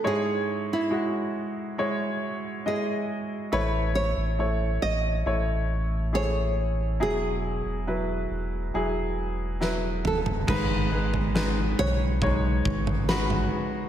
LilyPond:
<<
  \new Staff \with { instrumentName = "Nylon-string guitar" } { \time 4/4 \key gis \phrygian \tempo 4 = 69 gis'8. e'4. r8. gis'4 | b'8 cis''4 dis''4 r8 cis''4 | gis'2. r8 a'8 | b'4. cis''4. b'4 | }
  \new Staff \with { instrumentName = "Grand piano" } { \time 4/4 \key gis \phrygian <gis e' cis''>4 <gis e' fis'>4 <gis e' cis''>4 <gis e' dis''>4 | <a e' cis''>4 <a e' cis''>4 <a e' cis''>4 <a e' gis'>4 | <fis e' gis'>4 <fis e' b'>4 <fis e' gis'>4 <fis e' b'>4 | <gis dis' b'>8 <gis dis' b'>8 <gis dis' b'>4 <gis dis' cis''>4 <gis dis' fis'>4 | }
  \new Staff \with { instrumentName = "Grand piano" } { \clef bass \time 4/4 \key gis \phrygian gis,4. r2 r8 | r1 | b,4. r2 r8 | <gis, dis>4. r2 r8 | }
  \new Staff \with { instrumentName = "Sub bass" } { \clef bass \time 4/4 \key gis \phrygian r1 | a,,8. a,,8. a,,8 a,,2 | e,,8. e,,8. e,,8 e,,2 | gis,,4. b,,4 gis,,4 r8 | }
  \new DrumStaff \with { instrumentName = "Drums" } \drummode { \time 4/4 r4 r4 r4 r4 | r4 r4 r4 r4 | r4 r4 r4 sn8 toml16 tomfh16 | <cymc bd tomfh>8. tomfh16 sn8 tomfh8 <bd tomfh>8 bd16 tomfh16 sn16 tomfh8. | }
>>